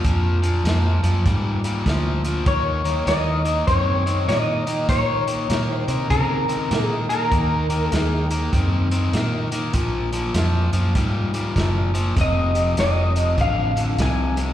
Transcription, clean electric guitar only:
2.48 3.08 C#5 loud
3.08 3.64 D#5 medium
3.67 4.28 C#5 loud
4.29 4.89 D#5 loud
4.89 5.71 C#5 medium
5.71 6.10 C5 medium
6.10 6.82 A#4 medium
6.82 7.08 G#4 medium
7.09 7.89 A#4 medium
7.89 8.26 G#4 medium
12.21 12.79 D#5 medium
12.80 13.41 D#5 medium
13.41 13.96 F5 loud
14.02 14.53 G#5 loud

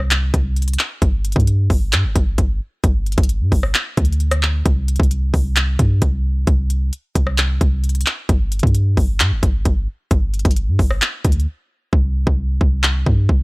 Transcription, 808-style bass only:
0.00 0.32 C2 loud
0.34 0.77 C2 loud
1.02 1.35 G1 loud
1.36 1.69 G2 loud
1.70 1.94 G1 loud
1.93 2.06 G2 loud
2.04 2.15 G1 loud
2.16 2.37 G1 loud
2.38 2.60 G1 loud
2.84 3.16 G1 loud
3.18 3.42 G1 loud
3.41 3.51 G2 loud
3.52 3.74 G1 loud
3.97 4.63 D2 loud
4.66 4.98 C2 loud
5.00 5.32 C2 loud
5.34 5.77 C2 loud
5.79 6.01 G2 loud
6.02 6.45 C2 loud
6.47 6.91 C2 loud
7.15 7.59 C2 loud
7.61 8.05 C2 loud
8.29 8.62 G1 loud
8.63 8.96 G2 loud
8.97 9.22 G1 loud
9.20 9.33 G2 loud
9.31 9.42 G1 loud
9.43 9.65 G1 loud
9.65 9.87 G1 loud
10.11 10.44 G1 loud
10.45 10.69 G1 loud
10.68 10.79 G2 loud
10.79 11.01 G1 loud
11.25 11.46 D2 loud
11.93 12.26 C2 loud
12.27 12.60 C2 loud
12.61 13.05 C2 loud
13.06 13.28 G2 loud
13.29 13.43 C2 loud

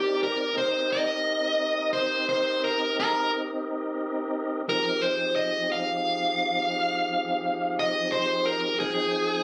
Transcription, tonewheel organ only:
0.00 0.50 C4 medium
0.00 0.49 D#4 medium
0.00 0.50 G4 medium
0.00 0.50 A#4 medium
0.00 0.51 D5 medium
0.53 4.62 C4 medium
0.53 4.62 D#4 medium
0.53 4.62 G4 medium
0.53 4.62 A#4 medium
0.53 4.62 D#5 medium
4.68 8.76 F3 medium
4.68 8.76 C4 medium
4.68 8.76 D#4 medium
4.68 8.76 G4 medium
4.68 8.76 G#4 medium
8.80 9.43 F3 medium
8.80 9.43 C4 medium
8.80 9.43 D#4 medium
8.80 9.43 G#4 medium
8.80 9.43 G5 medium

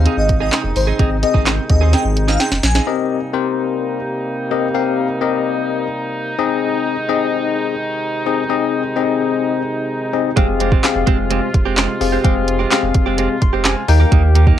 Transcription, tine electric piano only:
0.00 0.47 C4 medium
0.00 0.47 G#4 medium
0.00 0.47 F5 medium
0.99 1.16 C4 medium
0.99 1.16 G#4 medium
0.99 1.16 D#5 medium
1.23 1.55 C4 medium
1.23 1.55 G#4 medium
1.23 1.56 D#5 medium
1.70 2.35 C4 medium
1.70 2.35 G#4 medium
1.70 2.35 D#5 medium
2.87 3.19 C4 medium
2.87 3.19 G4 medium
2.87 3.20 A#4 medium
2.87 3.20 D#5 loud
3.34 3.99 C4 medium
3.34 3.99 G4 medium
3.34 3.99 A#4 medium
3.34 3.99 C5 loud
4.51 4.67 C4 medium
4.51 4.67 G4 medium
4.51 4.67 A#4 medium
4.51 4.67 D#5 medium
4.74 5.07 C4 medium
4.74 5.07 G4 medium
4.74 5.07 A#4 medium
4.74 5.07 F5 loud
5.21 5.86 C4 medium
5.21 5.86 G4 medium
5.21 5.86 A#4 medium
5.21 5.86 D#5 loud
6.39 6.95 C4 loud
6.39 6.95 D#4 medium
6.39 6.95 G#4 medium
6.39 6.95 D#5 loud
7.09 7.74 C4 loud
7.09 7.74 D#4 medium
7.09 7.74 G#4 medium
7.09 7.74 D#5 loud
8.26 8.42 C4 medium
8.26 8.42 D#4 medium
8.26 8.42 G#4 medium
8.26 8.42 D#5 medium
8.49 8.82 C4 medium
8.49 8.82 D#4 medium
8.49 8.82 G#4 medium
8.49 8.82 D#5 loud
8.96 9.61 C4 medium
8.96 9.61 D#4 medium
8.96 9.61 G#4 medium
8.96 9.61 D#5 loud
10.13 10.30 C4 medium
10.13 10.30 D#4 medium
10.13 10.30 G#4 medium
10.13 10.30 D#5 medium
10.37 10.69 C4 medium
10.37 10.69 G4 medium
10.37 10.70 G#4 medium
10.37 10.70 F5 loud
10.84 11.49 C4 medium
10.84 11.49 G4 medium
10.84 11.49 G#4 medium
10.84 11.49 F5 loud
12.01 12.17 C4 medium
12.01 12.17 G4 medium
12.01 12.17 G#4 medium
12.01 12.17 F5 medium
12.24 12.57 C4 medium
12.24 12.57 G4 medium
12.24 12.57 G#4 medium
12.24 12.57 F5 loud
12.71 13.36 C4 medium
12.71 13.36 G4 medium
12.71 13.36 G#4 medium
12.71 13.36 F5 loud
13.42 13.64 C6 medium
13.65 13.87 G#5 medium
13.88 14.45 D#4 loud
13.88 14.45 G4 medium
13.88 14.45 A#4 medium
13.88 14.10 F5 medium
13.88 14.45 G5 loud

